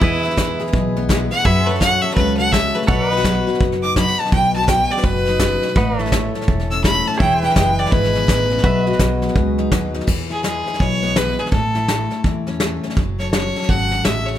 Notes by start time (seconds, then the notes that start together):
Already playing: B3 E4
0.01 E2 E3 G#4 B4 D#5, kick, snare
0.23 B3 E5, snare
0.31 snare
0.37 G#3, kick, snare, hi-hat pedal
0.60 G#4, snare
0.67 snare
0.73 B1 B2, kick, snare
0.96 B3, snare
1.09 G#3 E4, kick, snare, hi-hat pedal
1.31 B3 F#5, snare
1.39 snare
1.44 F#2 F#3 G#4 B4 E5 F#5, kick, snare
1.65 A4 B4, snare
1.71 C#5
1.75 snare
1.80 C#4 F#5, kick, snare, hi-hat pedal
2.02 A4 E5, snare
2.11 B4, snare
2.17 C#2 C#3, kick, snare
2.37 F#4 F#5, snare
2.52 G#3 E5, kick, snare, hi-hat pedal
2.75 A3 B4, snare
2.82 snare
2.87 B1 B2 A4 B4 C#5 F#5, kick, snare
3.12 D#4 B4 D#5, snare
3.17 F#4, snare
3.24 F#3, kick, snare, hi-hat pedal
3.47 F#4, snare
3.55 snare
3.60 F#1 B2, kick, snare
3.72 snare
3.83 D#4 D6, snare
3.96 F#3 D#4 B5, kick, snare, hi-hat pedal
4.08 F#4
4.20 D#4 A5, snare
4.26 snare
4.32 B1 B2 G5, kick, snare
4.55 F#4 A5, snare
4.62 snare
4.68 F#3 G5, kick, snare, hi-hat pedal
4.90 G#4 D5, snare
4.97 B4, snare
5.03 F#1 B2 B4, kick, snare
5.26 D#4, snare
5.39 C#3, kick, snare, hi-hat pedal
5.62 B2, snare
5.69 snare
5.75 A1 A2 B4 D#5 F#5, kick, snare
5.99 E4 A4 C#5 E5, snare
6.06 snare
6.12 A3, kick, snare, hi-hat pedal
6.35 A4, snare
6.41 snare
6.48 E1 E3, kick, snare
6.60 snare
6.71 C#4 E6, snare
6.84 A3 E4 B5, kick, snare, hi-hat pedal
7.07 C#4 A5, snare
7.14 G#4, snare
7.19 E1 E3 C#5 E5 G5, kick, snare
7.43 E4 B4 G5, snare
7.50 snare
7.56 F#1 G#3 G5, kick, snare, hi-hat pedal
7.79 G#4 D5, snare
7.86 snare
7.91 G#1 B2 B4, kick, snare
8.04 snare
8.15 B3, snare
8.27 A1 D#3, kick, snare, hi-hat pedal
8.50 C#3, snare
8.58 snare
8.64 B1 B2 F#4 B4 E5, kick, snare
8.86 F#4 D#5, snare
8.93 snare
8.99 B1 F#3, kick, snare, hi-hat pedal
9.22 G#4, snare
9.29 snare
9.36 C#2 B2, kick, snare
9.58 D#4, snare
9.72 D#2 F#3 F#4, kick, snare, hi-hat pedal
9.94 D#4, snare
10.01 snare
10.07 E2 E3, kick, snare, crash
10.30 E4 G#4, snare
10.43 G#3 G#4, snare, hi-hat pedal
10.66 E4, snare
10.74 snare
10.79 B1 B2 C#5, kick, snare
11.03 B3, snare
11.16 G#3 E4 B4, snare, hi-hat pedal
11.39 B3 G#4, snare
11.46 snare
11.51 A1 A2 A4, kick, snare
11.75 E4, snare
11.88 A3, snare, hi-hat pedal
12.11 E4, snare
12.24 E2 E3, kick, snare
12.47 C#4, snare
12.60 A3 E4, snare, hi-hat pedal
12.83 C#4, snare
12.90 snare
12.97 F#1 F#3, kick, snare
13.19 A4 C#5, snare
13.31 C#4 C#5, snare, hi-hat pedal
13.56 A4, snare
13.62 snare
13.68 G#1 C#3 F#5, kick, snare
13.91 F#4, snare
14.04 A1 G#3 E5, snare, hi-hat pedal
14.26 A3 C#5, snare
14.35 snare